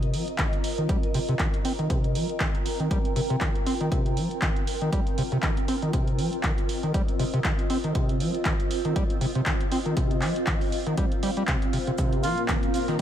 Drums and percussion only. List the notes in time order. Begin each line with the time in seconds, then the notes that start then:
0.03 closed hi-hat
0.14 open hi-hat
0.28 closed hi-hat
0.38 kick, clap, closed hi-hat
0.53 closed hi-hat
0.64 open hi-hat
0.78 closed hi-hat
0.89 kick, closed hi-hat
1.03 closed hi-hat
1.14 open hi-hat
1.28 closed hi-hat
1.39 kick, clap, closed hi-hat
1.54 closed hi-hat
1.65 open hi-hat
1.79 closed hi-hat
1.90 kick, closed hi-hat
2.04 closed hi-hat
2.15 open hi-hat
2.29 closed hi-hat
2.40 kick, clap, closed hi-hat
2.55 closed hi-hat
2.66 open hi-hat
2.80 closed hi-hat
2.91 kick, closed hi-hat
3.05 closed hi-hat
3.16 open hi-hat
3.30 closed hi-hat
3.41 kick, clap, closed hi-hat
3.55 closed hi-hat
3.67 open hi-hat
3.81 closed hi-hat
3.92 kick, closed hi-hat
4.06 closed hi-hat
4.17 open hi-hat
4.31 closed hi-hat
4.42 kick, clap, closed hi-hat
4.56 closed hi-hat
4.67 open hi-hat
4.81 closed hi-hat
4.93 kick, closed hi-hat
5.07 closed hi-hat
5.18 open hi-hat
5.32 closed hi-hat
5.43 kick, clap, closed hi-hat
5.57 closed hi-hat
5.68 open hi-hat
5.82 closed hi-hat
5.93 kick, closed hi-hat
6.07 closed hi-hat
6.19 open hi-hat
6.33 closed hi-hat
6.43 kick, clap, closed hi-hat
6.58 closed hi-hat
6.69 open hi-hat
6.83 closed hi-hat
6.94 kick, closed hi-hat
7.08 closed hi-hat
7.19 open hi-hat
7.34 closed hi-hat
7.44 kick, clap, closed hi-hat
7.59 closed hi-hat
7.70 open hi-hat
7.84 closed hi-hat
7.95 kick, closed hi-hat
8.09 closed hi-hat
8.20 open hi-hat
8.34 closed hi-hat
8.45 kick, clap, closed hi-hat
8.60 closed hi-hat
8.71 open hi-hat
8.85 closed hi-hat
8.96 kick, closed hi-hat
9.10 closed hi-hat
9.21 open hi-hat
9.35 closed hi-hat
9.46 kick, clap, closed hi-hat
9.61 closed hi-hat
9.72 open hi-hat
9.86 closed hi-hat
9.97 kick, closed hi-hat
10.11 closed hi-hat
10.22 clap, open hi-hat
10.36 closed hi-hat
10.47 kick, clap, closed hi-hat
10.61 open hi-hat
10.72 open hi-hat
10.86 closed hi-hat
10.97 kick, closed hi-hat
11.12 closed hi-hat
11.23 open hi-hat
11.37 closed hi-hat
11.48 kick, clap, closed hi-hat
11.62 closed hi-hat
11.73 open hi-hat
11.87 closed hi-hat
11.98 kick, closed hi-hat, shaker
12.12 closed hi-hat
12.23 snare, open hi-hat, shaker
12.38 closed hi-hat
12.48 kick, snare, clap, closed hi-hat, shaker
12.63 closed hi-hat
12.74 open hi-hat, shaker
12.88 snare, closed hi-hat